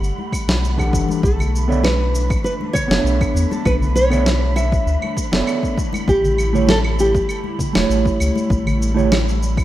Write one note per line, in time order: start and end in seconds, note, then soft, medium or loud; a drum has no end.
0.00 0.12 G1 medium
0.00 1.19 D3 medium
0.00 1.19 G3 medium
0.00 9.64 A3 medium
0.00 0.29 G4 medium
0.00 1.19 F#5 medium
0.00 9.64 B5 medium
0.00 cabasa soft
0.18 high conga medium
0.33 kick medium
0.33 cabasa medium
0.33 claves medium
0.48 0.95 B1 medium
0.48 snare medium
0.48 cabasa soft
0.65 cabasa soft
0.77 1.21 E3 medium
0.77 1.21 D4 medium
0.77 1.21 G4 medium
0.77 1.22 A4 medium
0.77 1.22 F#5 loud
0.77 kick medium
0.77 cabasa soft
0.77 claves medium
0.93 1.03 G1 loud
0.93 kick loud
0.93 cabasa medium
1.09 high conga medium
1.09 cabasa soft
1.23 2.36 B1 medium
1.23 9.64 D3 medium
1.23 5.74 E3 medium
1.23 5.74 D4 medium
1.23 1.86 A4 medium
1.23 kick loud
1.23 cabasa soft
1.39 low conga medium
1.39 cabasa soft
1.39 claves medium
1.56 cabasa medium
1.68 1.85 B3 medium
1.68 1.86 A4 medium
1.68 1.86 C#5 medium
1.68 1.86 D5 medium
1.68 1.87 E5 loud
1.68 low conga medium
1.68 cabasa soft
1.83 2.43 B4 medium
1.83 snare medium
1.83 high conga medium
1.83 cabasa soft
1.83 claves medium
2.15 cabasa medium
2.30 kick loud
2.30 cabasa soft
2.30 claves medium
2.44 2.52 B4 medium
2.44 cabasa soft
2.61 high conga medium
2.73 3.53 C#5 loud
2.73 kick medium
2.73 low conga medium
2.73 cabasa medium
2.73 claves medium
2.88 3.00 F#1 medium
2.88 4.06 B3 medium
2.88 4.08 D4 medium
2.88 4.07 A4 medium
2.88 4.08 C#5 medium
2.88 snare medium
2.92 4.09 E5 loud
2.92 cabasa soft
3.04 3.25 B1 medium
3.04 cabasa soft
3.21 kick loud
3.21 cabasa soft
3.21 claves medium
3.35 3.45 E2 loud
3.35 cabasa medium
3.51 3.66 A4 medium
3.51 high conga medium
3.51 cabasa soft
3.65 4.79 B1 loud
3.65 3.74 B4 medium
3.65 kick loud
3.65 cabasa soft
3.65 claves medium
3.82 low conga medium
3.82 cabasa soft
3.96 4.56 C#5 loud
3.96 cabasa medium
4.10 4.28 B3 loud
4.10 4.28 A4 medium
4.10 4.28 C#5 medium
4.10 4.29 D5 medium
4.10 4.29 E5 loud
4.10 low conga medium
4.10 cabasa soft
4.10 claves medium
4.26 snare medium
4.26 high conga medium
4.26 cabasa soft
4.56 5.13 E5 loud
4.56 cabasa medium
4.56 claves medium
4.72 kick loud
4.72 cabasa soft
4.87 4.97 D2 medium
4.87 cabasa soft
5.02 high conga medium
5.02 claves medium
5.17 kick medium
5.17 cabasa medium
5.32 5.42 F#1 medium
5.32 5.75 B3 medium
5.32 5.76 A4 medium
5.32 5.76 C#5 medium
5.32 5.76 D5 medium
5.32 5.77 E5 loud
5.32 snare medium
5.32 cabasa soft
5.47 cabasa soft
5.47 claves medium
5.63 kick medium
5.63 cabasa soft
5.78 9.64 G3 medium
5.78 9.64 E4 medium
5.78 kick medium
5.78 cabasa medium
5.93 high conga loud
5.93 cabasa soft
5.93 claves medium
6.08 7.21 A1 loud
6.08 6.69 G4 loud
6.08 kick loud
6.08 cabasa soft
6.24 low conga medium
6.24 cabasa soft
6.38 cabasa medium
6.38 claves medium
6.53 6.70 A3 medium
6.53 6.71 E4 medium
6.53 6.71 G4 medium
6.53 6.71 C#5 loud
6.53 low conga medium
6.53 cabasa soft
6.67 6.78 A4 loud
6.67 snare medium
6.67 high conga medium
6.67 cabasa soft
6.84 claves medium
6.99 9.64 G4 medium
6.99 cabasa medium
7.15 kick loud
7.15 cabasa soft
7.29 cabasa soft
7.29 claves medium
7.44 high conga medium
7.59 kick medium
7.59 low conga medium
7.59 cabasa medium
7.73 7.85 E1 loud
7.73 8.92 A3 medium
7.73 8.92 E4 medium
7.73 8.93 G4 medium
7.73 snare medium
7.73 cabasa soft
7.73 claves medium
7.78 8.94 C#5 loud
7.90 8.10 A1 medium
7.90 cabasa soft
8.05 kick loud
8.05 cabasa soft
8.20 8.31 C#2 loud
8.20 cabasa medium
8.20 claves medium
8.36 high conga medium
8.36 cabasa soft
8.50 9.64 A1 loud
8.50 kick loud
8.50 cabasa soft
8.67 low conga loud
8.67 cabasa soft
8.67 claves medium
8.82 cabasa medium
8.94 9.12 A3 loud
8.94 9.13 E4 medium
8.94 9.13 G4 medium
8.94 9.13 C#5 loud
8.94 low conga medium
8.98 cabasa soft
9.12 snare medium
9.12 high conga medium
9.12 cabasa soft
9.12 claves medium
9.29 cabasa soft
9.43 cabasa medium
9.57 kick loud
9.57 cabasa soft
9.57 claves medium